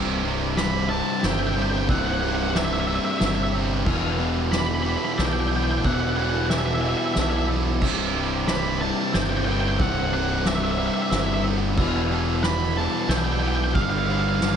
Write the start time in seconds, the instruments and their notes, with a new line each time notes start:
Already playing: fingered electric bass C1, distorted electric guitar C2 G2 C3, clean electric guitar C2 E3 G3, string section G3 E4 B4 E5, glockenspiel E6
0.24 distorted electric guitar C2 G2 C3, clean electric guitar G3
0.57 distorted electric guitar C2 G2 C3, clean electric guitar C3, lead electric guitar B5, glockenspiel D6, snare, ride
0.90 distorted electric guitar C2 G2 C3, clean electric guitar G3, lead electric guitar A5
1.23 fingered electric bass G1, distorted electric guitar C2 G2 C3, clean electric guitar E4, lead electric guitar G5, glockenspiel E6, snare, ride
1.32 lead electric guitar G5
1.39 lead electric guitar G5
1.47 lead electric guitar G5
1.54 distorted electric guitar C2 G2 C3, clean electric guitar B3, lead electric guitar G5
1.62 lead electric guitar G5
1.70 lead electric guitar G5
1.78 lead electric guitar G5
1.88 fingered electric bass C1, distorted electric guitar C2 G2 C3, clean electric guitar C2, string section B4, lead electric guitar F#5, glockenspiel E6, kick, ride
1.98 lead electric guitar F#5
2.05 lead electric guitar F#5
2.14 lead electric guitar F#5
2.21 distorted electric guitar C2 G2 C3, clean electric guitar G3, lead electric guitar F#5, ride
2.29 lead electric guitar F#5
2.35 lead electric guitar F#5
2.43 lead electric guitar F#5
2.50 clean electric guitar C3, lead electric guitar F#5
2.55 distorted electric guitar C2 G2 C3, lead electric guitar E5, glockenspiel D6, snare, ride
2.65 lead electric guitar E5
2.73 lead electric guitar E5
2.80 lead electric guitar E5
2.86 distorted electric guitar C2 G2 C3, clean electric guitar G3, lead electric guitar E5
2.96 lead electric guitar E5
3.05 lead electric guitar E5
3.11 lead electric guitar E5
3.18 fingered electric bass G1, distorted electric guitar C2 G2, clean electric guitar E4, lead electric guitar E5, glockenspiel E6, snare, ride
3.22 distorted electric guitar C3
3.26 lead electric guitar E5
3.35 lead electric guitar E5
3.43 lead electric guitar E5
3.53 distorted electric guitar C2 G2 C3, clean electric guitar B3
3.85 fingered electric bass E1, clean electric guitar E2, distorted electric guitar E2 B2 E3, string section G3 D4 B4, glockenspiel E6, kick, crash
4.19 distorted electric guitar E2 B2 E3, clean electric guitar G3
4.52 distorted electric guitar E2 B2 E3, clean electric guitar E3, lead electric guitar B5, glockenspiel D6, snare, ride
4.59 lead electric guitar B5
4.67 lead electric guitar B5
4.75 lead electric guitar B5
4.83 distorted electric guitar E2, clean electric guitar G3, lead electric guitar B5
4.87 distorted electric guitar B2 E3, lead electric guitar B5
4.97 lead electric guitar B5
5.05 lead electric guitar B5
5.12 lead electric guitar B5
5.18 fingered electric bass B1, distorted electric guitar E2 B2 E3, clean electric guitar D4, lead electric guitar G5, glockenspiel E6, snare, ride
5.25 lead electric guitar G5
5.33 lead electric guitar G5
5.40 lead electric guitar G5
5.48 clean electric guitar B3, lead electric guitar G5
5.53 distorted electric guitar E2 B2 E3, lead electric guitar G5
5.64 lead electric guitar G5
5.71 lead electric guitar G5
5.78 lead electric guitar G5
5.84 fingered electric bass E1, clean electric guitar E2, distorted electric guitar E2 B2 E3, string section A4, lead electric guitar F#5, glockenspiel E6, kick, ride
5.92 lead electric guitar F#5
6.00 lead electric guitar F#5
6.09 lead electric guitar F#5
6.16 distorted electric guitar E2 B2 E3, clean electric guitar G3, lead electric guitar F#5, ride
6.22 lead electric guitar F#5
6.30 lead electric guitar F#5
6.37 lead electric guitar F#5
6.46 clean electric guitar E3, lead electric guitar F#5
6.50 distorted electric guitar E2 B2 E3, lead electric guitar E5, glockenspiel D6, snare, ride
6.58 lead electric guitar E5
6.66 lead electric guitar E5
6.74 lead electric guitar E5
6.81 distorted electric guitar E2 B2, clean electric guitar G3, lead electric guitar E5
6.85 distorted electric guitar E3, lead electric guitar E5
6.97 lead electric guitar E5
7.06 lead electric guitar E5
7.14 fingered electric bass B1, distorted electric guitar E2, clean electric guitar D4, lead electric guitar E5, glockenspiel E6, snare, ride
7.18 distorted electric guitar B2 E3, lead electric guitar E5
7.30 lead electric guitar E5
7.37 lead electric guitar E5
7.48 distorted electric guitar E2 B2 E3, clean electric guitar B3
7.79 fingered electric bass C1, clean electric guitar C2, distorted electric guitar C2 G2 C3, string section G3 B4 E5, glockenspiel E6, kick, crash
8.14 distorted electric guitar C2 G2 C3, clean electric guitar G3
8.47 distorted electric guitar C2 G2 C3, clean electric guitar C3, lead electric guitar B5, glockenspiel D6, snare, ride
8.80 distorted electric guitar C2 G2 C3, clean electric guitar G3, lead electric guitar A5
9.13 fingered electric bass G1, distorted electric guitar C2 G2 C3, clean electric guitar E4, lead electric guitar G5, glockenspiel E6, snare, ride
9.22 lead electric guitar G5
9.30 lead electric guitar G5
9.37 lead electric guitar G5
9.45 distorted electric guitar C2 G2 C3, clean electric guitar B3, lead electric guitar G5
9.52 lead electric guitar G5
9.61 lead electric guitar G5
9.68 lead electric guitar G5
9.78 fingered electric bass C1, clean electric guitar C2, distorted electric guitar C2 G2 C3, string section F#5, lead electric guitar F#5, glockenspiel E6, kick, ride
10.12 distorted electric guitar C2 G2 C3, clean electric guitar G3, lead electric guitar F#5, ride
10.45 distorted electric guitar C2 G2 C3, clean electric guitar C3, lead electric guitar E5, glockenspiel D6, snare, ride
10.55 lead electric guitar E5
10.64 lead electric guitar E5
10.71 lead electric guitar E5
10.78 distorted electric guitar C2 G2 C3, clean electric guitar G3, lead electric guitar E5
10.86 lead electric guitar E5
10.94 lead electric guitar E5
11.02 lead electric guitar E5
11.10 fingered electric bass G1, distorted electric guitar C2 G2 C3, clean electric guitar E4, lead electric guitar E5, glockenspiel E6, snare, ride
11.17 lead electric guitar E5
11.26 lead electric guitar E5
11.34 lead electric guitar E5
11.44 distorted electric guitar C2 G2 C3, clean electric guitar B3
11.76 fingered electric bass E1, clean electric guitar E2, distorted electric guitar E2 B2 E3, string section G3 D4 E4 E5, glockenspiel E6, kick, crash
12.10 distorted electric guitar E2 B2 E3, clean electric guitar G3
12.43 distorted electric guitar E2 B2 E3, clean electric guitar E3, lead electric guitar B5, glockenspiel D6, snare, ride
12.76 distorted electric guitar E2 B2 E3, clean electric guitar G3, lead electric guitar A5
13.08 fingered electric bass B1, distorted electric guitar E2 B2 E3, clean electric guitar D4, lead electric guitar G5, glockenspiel E6, snare, ride
13.17 lead electric guitar G5
13.24 lead electric guitar G5
13.33 lead electric guitar G5
13.40 distorted electric guitar E2 B2 E3, clean electric guitar B3, lead electric guitar G5
13.48 lead electric guitar G5
13.56 lead electric guitar G5
13.64 lead electric guitar G5
13.74 fingered electric bass G1, clean electric guitar G2, distorted electric guitar G2 D3 G3, string section F4 F5, lead electric guitar F5, glockenspiel E6, kick, ride
13.82 lead electric guitar F5
13.90 lead electric guitar F5
13.97 lead electric guitar F5
14.06 distorted electric guitar G2 D3 G3, clean electric guitar B3, lead electric guitar F5, ride
14.13 lead electric guitar F5
14.19 lead electric guitar F5
14.29 lead electric guitar F5
14.35 lead electric guitar F5
14.41 distorted electric guitar G2 D3 G3, clean electric guitar G3, lead electric guitar F5, glockenspiel D6, snare, ride
14.51 lead electric guitar F5